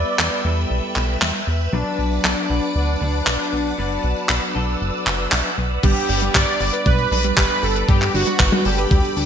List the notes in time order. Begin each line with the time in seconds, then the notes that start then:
Already playing: G3 B3 E4 B4 D5 E5 G5 E6
0.19 E2, clap
0.44 E2 G3 B3 E4 A4
0.70 B1
0.96 B1, clap
1.21 E2 G3 B3 E4 E5, clap
1.47 E2
1.73 B1 F#3 B3 D4 B4 D5 F#5 D6
1.98 B1
2.24 B1 D4, clap
2.49 B1 F#3 B3 D4 B4
2.75 D2 D4
3.01 D2 F#3 B3 D4 B4
3.27 B1, clap
3.53 B1
3.78 F#1 F#3 B3 D4 B4 E6
4.04 B1
4.29 B1, clap
4.55 B1 F#3 B3 D4 A4
4.81 F#1
5.07 F#1, clap
5.32 B1 F#3 B3 D4 E5, clap
5.58 B1
5.83 G1 G3 B3 D4 G4 B4 D5 B5 D6, kick, closed hi-hat, crash
5.97 closed hi-hat
6.09 G1 D4, open hi-hat
6.22 G3, closed hi-hat
6.35 G1 G4 D5, kick, clap
6.47 closed hi-hat
6.60 G1 G3 B3 D4 B4, open hi-hat
6.73 B4, closed hi-hat
6.86 B1 G3 B4, kick, closed hi-hat
6.98 closed hi-hat
7.11 B1 G3 B3 D4 B4, open hi-hat
7.24 G3, closed hi-hat
7.37 G1 G4 B4, kick, clap, closed hi-hat
7.50 closed hi-hat
7.63 G1 G3 A4, open hi-hat
7.76 B4, closed hi-hat
7.88 G2 G3 B3 D4 G4 B4, kick, closed hi-hat
8.02 clap, closed hi-hat
8.14 G1 D4 F#4, open hi-hat
8.27 G3, closed hi-hat
8.40 G1 G4, kick, clap, closed hi-hat
8.52 closed hi-hat, high tom
8.65 G1 G3 B3 D4 G4 A4, open hi-hat
8.78 B4, closed hi-hat
8.91 D2 G3, kick, closed hi-hat
9.05 closed hi-hat
9.17 D2 D4, open hi-hat